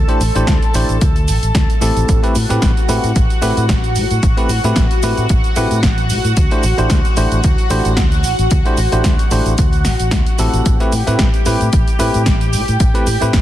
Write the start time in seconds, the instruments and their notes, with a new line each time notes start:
Already playing: analog synth pad A4 A5
0.08 tine electric piano A3 D4 E4 G4 C5, closed hi-hat, cabasa
0.21 fingered electric bass A1, open hi-hat, cabasa
0.35 fingered electric bass A1, tine electric piano A3 D4 E4 G4 C5, closed hi-hat, cabasa
0.47 fingered electric bass D2, kick, snare, closed hi-hat, cabasa
0.62 closed hi-hat, cabasa
0.74 fingered electric bass A1, tine electric piano A3 D4 E4 G4 C5, open hi-hat, cabasa
0.89 fingered electric bass A1, closed hi-hat, cabasa
1.01 fingered electric bass D2, kick, closed hi-hat, cabasa
1.16 closed hi-hat, cabasa
1.28 fingered electric bass A1, open hi-hat, cabasa
1.43 fingered electric bass A1, closed hi-hat, cabasa
1.55 fingered electric bass D2, kick, snare, closed hi-hat, cabasa
1.70 closed hi-hat, cabasa
1.81 fingered electric bass A1, tine electric piano A3 C4 E4 G4 A4, open hi-hat, cabasa
1.97 fingered electric bass A1, closed hi-hat, cabasa
2.09 fingered electric bass A1, analog synth pad F#4 F#5, kick, closed hi-hat, cabasa
2.23 tine electric piano A3 C4 E4 G4 B4, closed hi-hat, cabasa
2.35 fingered electric bass A2, open hi-hat, cabasa
2.49 fingered electric bass A2, tine electric piano A3 C4 E4 G4 B4, closed hi-hat, cabasa
2.62 fingered electric bass A1, kick, snare, closed hi-hat, cabasa
2.77 closed hi-hat, cabasa
2.88 fingered electric bass A2, tine electric piano A3 C4 E4 G4 B4, open hi-hat, cabasa
3.04 fingered electric bass A2, closed hi-hat, cabasa
3.16 fingered electric bass A1, kick, closed hi-hat, cabasa
3.30 closed hi-hat, cabasa
3.42 fingered electric bass A2, tine electric piano A3 C4 E4 G4 B4, open hi-hat, cabasa
3.57 fingered electric bass A2, closed hi-hat, cabasa
3.69 fingered electric bass A1, kick, snare, closed hi-hat, cabasa
3.84 closed hi-hat, cabasa
3.96 fingered electric bass A2, open hi-hat, cabasa
4.11 fingered electric bass A2, closed hi-hat, cabasa
4.23 fingered electric bass A1, kick, closed hi-hat, cabasa
4.37 tine electric piano A3 C4 E4 G4 B4, closed hi-hat, cabasa
4.49 fingered electric bass A2, open hi-hat, cabasa
4.64 fingered electric bass A2, tine electric piano A3 C4 E4 G4 B4, closed hi-hat, cabasa
4.76 fingered electric bass A1, kick, snare, closed hi-hat, cabasa
4.91 closed hi-hat, cabasa
5.03 fingered electric bass A2, tine electric piano A3 C4 E4 G4 B4, open hi-hat, cabasa
5.17 fingered electric bass A2, closed hi-hat, cabasa
5.29 fingered electric bass A1, kick, closed hi-hat, cabasa
5.44 closed hi-hat, cabasa
5.56 fingered electric bass A2, tine electric piano A3 C4 E4 G4 B4, open hi-hat, cabasa
5.71 fingered electric bass A2, closed hi-hat, cabasa
5.83 fingered electric bass A1, kick, snare, closed hi-hat, cabasa
5.98 closed hi-hat, cabasa
6.10 fingered electric bass A2, open hi-hat, cabasa
6.25 fingered electric bass A2, closed hi-hat, cabasa
6.37 fingered electric bass D2, kick, closed hi-hat, cabasa
6.51 tine electric piano A3 D4 E4 G4 C5, closed hi-hat, cabasa
6.63 fingered electric bass A1, open hi-hat, cabasa
6.78 fingered electric bass A1, tine electric piano A3 D4 E4 G4 C5, closed hi-hat, cabasa
6.90 fingered electric bass D2, kick, snare, closed hi-hat, cabasa
7.05 closed hi-hat, cabasa
7.17 fingered electric bass A1, tine electric piano A3 D4 E4 G4 C5, open hi-hat, cabasa
7.32 fingered electric bass A1, closed hi-hat, cabasa
7.44 fingered electric bass D2, kick, closed hi-hat, cabasa
7.58 closed hi-hat, cabasa
7.70 fingered electric bass A1, tine electric piano A3 D4 E4 G4 C5, open hi-hat, cabasa
7.85 fingered electric bass A1, closed hi-hat, cabasa
7.97 fingered electric bass D2, kick, snare, closed hi-hat, cabasa
8.12 closed hi-hat, cabasa
8.24 fingered electric bass A1, open hi-hat, cabasa
8.39 fingered electric bass A1, closed hi-hat, cabasa
8.51 fingered electric bass D2, kick, closed hi-hat, cabasa
8.65 tine electric piano A3 D4 E4 G4 C5, closed hi-hat, cabasa
8.77 fingered electric bass A1, open hi-hat, cabasa
8.92 fingered electric bass A1, tine electric piano A3 D4 E4 G4 C5, closed hi-hat, cabasa
9.04 fingered electric bass D2, kick, snare, closed hi-hat, cabasa
9.19 closed hi-hat, cabasa
9.31 fingered electric bass A1, tine electric piano A3 D4 E4 G4 C5, open hi-hat, cabasa
9.46 fingered electric bass A1, closed hi-hat, cabasa
9.58 fingered electric bass D2, kick, closed hi-hat, cabasa
9.73 closed hi-hat, cabasa
9.85 fingered electric bass A1, snare, open hi-hat, cabasa
10.00 fingered electric bass A1, closed hi-hat, cabasa
10.11 fingered electric bass D2, kick, snare, closed hi-hat, cabasa
10.26 closed hi-hat, cabasa
10.39 fingered electric bass A1, tine electric piano A3 C4 E4 G4 A4, open hi-hat, cabasa
10.54 fingered electric bass A1, closed hi-hat, cabasa
10.65 fingered electric bass A1, analog synth pad G4 G5, kick, closed hi-hat, cabasa
10.80 tine electric piano A3 C4 E4 G4 B4, closed hi-hat, cabasa
10.92 fingered electric bass A2, open hi-hat, cabasa
11.07 fingered electric bass A2, tine electric piano A3 C4 E4 G4 B4, closed hi-hat, cabasa
11.19 fingered electric bass A1, kick, snare, closed hi-hat, cabasa
11.34 closed hi-hat, cabasa
11.46 fingered electric bass A2, tine electric piano A3 C4 E4 G4 B4, open hi-hat, cabasa
11.61 fingered electric bass A2, closed hi-hat, cabasa
11.73 fingered electric bass A1, kick, closed hi-hat, cabasa
11.88 closed hi-hat, cabasa
11.99 fingered electric bass A2, tine electric piano A3 C4 E4 G4 B4, open hi-hat, cabasa
12.14 fingered electric bass A2, closed hi-hat, cabasa
12.26 fingered electric bass A1, kick, snare, closed hi-hat, cabasa
12.41 closed hi-hat, cabasa
12.53 fingered electric bass A2, open hi-hat, cabasa
12.68 fingered electric bass A2, closed hi-hat, cabasa
12.80 fingered electric bass A1, kick, closed hi-hat, cabasa
12.94 tine electric piano A3 C4 E4 G4 B4, closed hi-hat, cabasa
13.07 fingered electric bass A2, open hi-hat, cabasa
13.21 fingered electric bass A2, tine electric piano A3 C4 E4 G4 B4, closed hi-hat, cabasa
13.33 fingered electric bass A1, kick, snare, closed hi-hat, cabasa